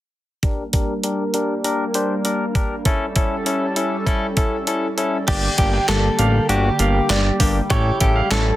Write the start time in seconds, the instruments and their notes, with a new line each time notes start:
0.43 analog synth pad G3 A#3 D4 A#4, tine electric piano D4 G4 A#4, kick, closed hi-hat
0.73 tine electric piano D4 G4 A#4, kick, closed hi-hat
1.04 tine electric piano D4 G4 A#4, closed hi-hat
1.34 tine electric piano D4 G4 A#4, closed hi-hat
1.64 tine electric piano D4 G4 A#4, closed hi-hat
1.94 tine electric piano D4 G4 C5, closed hi-hat
2.25 tine electric piano D4 G4 A#4, closed hi-hat
2.55 tine electric piano D4 G4 A#4, kick, closed hi-hat
2.85 analog synth pad G3 C#4 E4 A4, tine electric piano C#4 E4 A4, kick, closed hi-hat
3.16 tine electric piano C#4 E4 A4, kick, closed hi-hat
3.46 tine electric piano C#4 E4 A4, closed hi-hat
3.76 tine electric piano C#4 E4 A4, closed hi-hat
4.06 tine electric piano C#4 E4 A4, kick, closed hi-hat
4.37 tine electric piano C#4 E4 A4, kick, closed hi-hat
4.67 tine electric piano C#4 E4 A4, closed hi-hat
4.98 tine electric piano C#4 E4 A4, closed hi-hat
5.28 analog synth bass G1, analog synth pad D3 G3 A#3 G4, tine electric piano A#3 D4 G4, clean electric guitar G4, grand piano D5, kick, closed hi-hat, crash
5.58 analog synth bass G1, tine electric piano A#3 D4 G4, clean electric guitar G4, kick, closed hi-hat
5.73 grand piano G5
5.88 analog synth bass G1, tine electric piano A#3 D4 G4, clean electric guitar A4, snare, clap, closed hi-hat
6.19 analog synth bass A1, tine electric piano A#3 D4 G4, grand piano F5, closed hi-hat
6.49 analog synth bass G1, tine electric piano A#3 D4 F#4, clean electric guitar G4, closed hi-hat
6.79 analog synth bass G1, tine electric piano A#3 D4 G4, grand piano F5, closed hi-hat
7.10 analog synth bass G1, tine electric piano A#3 D4 G4, grand piano D5, snare, clap, closed hi-hat
7.40 analog synth bass G1, tine electric piano A#3 D4 G4, kick, open hi-hat
7.70 analog synth bass A1, analog synth pad C#3 A3 E4, tine electric piano C#4 E4 A4, clean electric guitar G4, grand piano C#5, kick, closed hi-hat
8.00 analog synth bass A1, tine electric piano C#4 E4 A4, clean electric guitar G4, kick, closed hi-hat
8.16 grand piano F5
8.31 analog synth bass A1, tine electric piano C#4 E4 A4, clean electric guitar A4, snare, clap, closed hi-hat